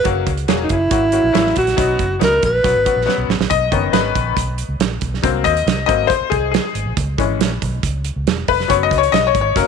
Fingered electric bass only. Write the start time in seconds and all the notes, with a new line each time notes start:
0.05 F#1
0.27 C#2
0.48 E1
0.70 F#1
0.91 G#1
1.24 A#1
1.35 A1
1.57 A#1
1.78 B1
1.99 F#1
2.21 C#2
2.43 A#1
2.64 B1
2.75 G#1
2.96 A#1
3.18 B1
3.28 A1
3.39 A#1
3.50 B1
3.72 F#1
3.92 G#1
4.16 A#1
4.37 B1
4.69 C#2
4.79 A#1
5.02 B1
5.24 C2
5.45 D#2
5.66 C2
5.89 G#1
6.21 muted fingered electric bass stroke
6.32 C2
6.75 G#1
6.86 A#1
6.97 C#2
7.18 G#1
7.39 A#1
7.62 B1
7.83 C#2
8.16 C#2
8.27 E1
8.49 F1
8.70 F#1
8.91 C#2
9.13 B1
9.35 G#1
9.56 F#1